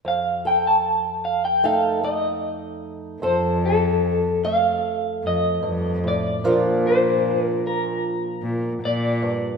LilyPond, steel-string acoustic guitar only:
\new Staff \with { instrumentName = "Steel-string acoustic guitar" } { \time 4/4 \key f \mixolydian \tempo 4 = 75 << { r8 a'4. <a ees' a'>8 a4. | a'4. a2~ a8 | <f bes d' f'>1 | } \\ { f,1 | f,2. g,8 a,8 | bes,2.~ bes,8 g,8 | } >> }